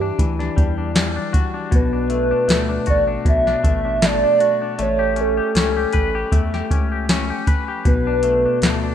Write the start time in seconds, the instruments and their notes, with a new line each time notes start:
Already playing: analog synth bass G2, clean electric guitar E3 G3, soft synth lead G4
0.01 clean electric guitar D4
0.19 analog synth bass D2, clean electric guitar E3, kick, closed hi-hat
0.39 clean electric guitar D4, snare
0.56 analog synth bass E2, clean electric guitar G3, kick, closed hi-hat
0.78 clean electric guitar D4
0.95 clean electric guitar G3, snare, closed hi-hat
1.16 clean electric guitar D4
1.33 clean electric guitar F#4, kick, closed hi-hat
1.54 clean electric guitar D4
1.71 analog synth bass B1, clean electric guitar B2, soft synth lead B4, kick, closed hi-hat
1.93 clean electric guitar D4
2.10 clean electric guitar A3, closed hi-hat
2.31 clean electric guitar D4
2.48 analog synth bass D2, clean electric guitar A3, snare, closed hi-hat
2.69 clean electric guitar D4
2.86 analog synth bass A1, clean electric guitar F#4, soft synth lead D5, kick, closed hi-hat
3.08 clean electric guitar D4
3.25 analog synth bass B1, clean electric guitar B2, soft synth lead E5, kick, closed hi-hat
3.47 clean electric guitar D4, snare
3.64 analog synth bass A1, clean electric guitar A3, soft synth lead E5, kick, closed hi-hat
3.85 clean electric guitar D4
4.02 clean electric guitar A3, soft synth lead D5, snare, closed hi-hat
4.24 clean electric guitar D4
4.40 clean electric guitar F#4, closed hi-hat
4.62 clean electric guitar D4
4.79 analog synth bass A1, clean electric guitar A3, soft synth lead C#5, closed hi-hat
4.99 clean electric guitar G4
5.16 clean electric guitar C#4, closed hi-hat
5.21 soft synth lead A4
5.37 clean electric guitar G4
5.55 analog synth bass C#2, clean electric guitar C#4, snare, closed hi-hat
5.77 clean electric guitar G4
5.93 analog synth bass A1, clean electric guitar B4, kick, closed hi-hat
6.15 clean electric guitar G4
6.32 analog synth bass E2, clean electric guitar A3, kick, closed hi-hat
6.54 clean electric guitar G4, snare
6.71 analog synth bass C#2, clean electric guitar C#4, kick, closed hi-hat
6.92 clean electric guitar G4
7.09 clean electric guitar C#4, snare, closed hi-hat
7.30 clean electric guitar G4
7.47 clean electric guitar B4, kick, closed hi-hat
7.68 clean electric guitar G4
7.85 analog synth bass B1, clean electric guitar B2, soft synth lead B4, kick, closed hi-hat
8.07 clean electric guitar D4
8.23 clean electric guitar A3, closed hi-hat
8.46 clean electric guitar D4
8.62 analog synth bass D2, clean electric guitar A3, snare, closed hi-hat
8.83 clean electric guitar D4